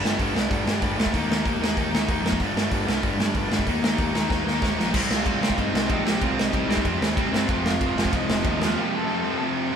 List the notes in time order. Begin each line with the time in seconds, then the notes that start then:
0.03 G1 G2 D3 G3, snare
0.19 G1 G2 D3 G3, kick, open hi-hat
0.34 C2 G2 D3 G3, snare
0.50 G1 G2 D3 G3, kick, open hi-hat
0.66 G2 D3 G3, snare
0.81 G1 G2 D3 G3, kick, open hi-hat
0.98 D2 G2 D3 G3, snare
1.06 kick
1.14 D#2 D#3 A#3 D#4, kick, open hi-hat
1.27 D#2 D#3 A#3 D#4
1.32 snare
1.45 D#2 D#3 A#3 D#4, kick, open hi-hat
1.60 D#2 D#3 A#3 D#4, snare
1.77 D#2 D#3 A#3 D#4, kick, open hi-hat
1.91 D#2 D#3 A#3 D#4, snare
2.08 D#2 D#3 A#3 D#4, kick, open hi-hat
2.23 F2 D#3 A#3 D#4, snare
2.32 kick
2.39 G1 G2 D3 G3, kick, open hi-hat
2.54 G1 G2 D3 G3, snare
2.71 G1 G2 D3 G3, kick, open hi-hat
2.87 C2 G2 D3 G3, snare
3.03 G1 G2 D3 G3, kick, open hi-hat
3.18 G2 D3 G3, snare
3.34 G1 G2 D3 G3, kick, open hi-hat
3.50 G1 G2 D3 G3, snare
3.59 kick
3.66 D#2 D#3 A#3 D#4, kick, open hi-hat
3.82 D#2 D#3 A#3 D#4, snare
3.98 D#2 D#3 A#3 D#4, kick, open hi-hat
4.13 D#2 D#3 A#3 D#4, snare
4.29 D#2 D#3 A#3 D#4, kick, snare
4.45 D#2 D#3 A#3 D#4, snare
4.61 D#2 D#3 A#3 D#4, kick, snare
4.77 A#1 D#3 A#3 D#4, snare
4.93 C2 C3 G3 C4, kick, crash
5.11 F4 F5, snare
5.25 C2 C3 G3 C4, kick, ride
5.41 C2 C3 G3 C4, snare
5.50 kick
5.57 G2 C3 G3 C4 D#4 D#5, kick, ride
5.73 C2, snare
5.89 A#1 C3 G3 C4 D#4 D#5, kick, ride
6.06 C3 G3 C4 G4 G5, snare
6.21 C2 C3 G3 C4 F4 F5, kick, ride
6.38 D#4 D#5, snare
6.52 C2 C3 G3 C4, kick, ride
6.68 C2 C3 G3 C4, snare
6.77 kick
6.84 F2 C3 G3 C4, kick, ride
7.00 D#2, snare
7.17 C2 C3 G3 C4, kick, ride
7.32 G2 C3 G3 C4, snare
7.49 F1 F2 C3 F3, kick, ride
7.66 F4 F5, snare
7.80 F1 F2 C3 F3, kick, ride
7.97 F1 F2 C3 F3, snare
8.05 kick
8.12 C2 F2 C3 F3 D#4 D#5, kick, ride
8.29 F1, snare
8.44 D#2 F2 C3 F3 D#4, kick, ride
8.50 D#5
8.61 F2 C3 F3 F4, snare
8.65 F5
8.77 F2 C3 F3
8.81 G4 G5
8.94 A4 A5
9.08 F2 C3 F3
9.24 F2 C3 F3
9.41 F2 C3 F3
9.72 F2 C3